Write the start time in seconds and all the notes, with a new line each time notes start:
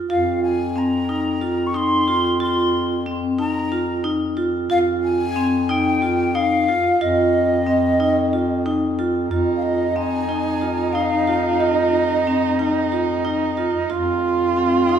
0.10 F2 F4 F5
0.43 G#5
0.76 C4 A#5
1.09 D#4
1.41 F4
1.67 C#6
1.74 D#4 C6
2.08 F4
2.40 F4 C6
3.06 C4
3.39 D#4 A#5
3.72 F4
4.04 D#4
4.37 F4
4.70 F2 F4 F5
5.03 G#5
5.36 C4
5.69 D#4 G5
6.02 F4
6.35 D#4 F5
6.69 F4
7.01 F2 F4 D#5
7.67 C4
8.00 D#4
8.33 F4
8.66 D#4
8.99 F4
9.30 F2 D#4 F4
9.56 F5
9.62 D#5
9.96 C4 G#5
10.29 D#4
10.61 F4
10.93 D#4 F5
11.27 F4
11.60 F4 D#5
12.27 C4
12.59 D#4
12.92 F4
13.25 D#4
13.57 F4
13.90 F2 F4
14.56 C4
14.83 G5
14.89 D#4 F5